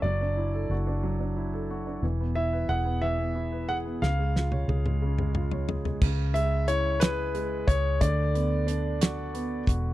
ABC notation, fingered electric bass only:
X:1
M:6/8
L:1/8
Q:3/8=60
K:C#phr
V:1 name="Fingered electric bass" clef=bass
F,,,2 F,,,4 | E,,,2 E,,,4 | C,,2 C,,4 | C,,4- C,, C,, |
D,,4- D,, E,,, |]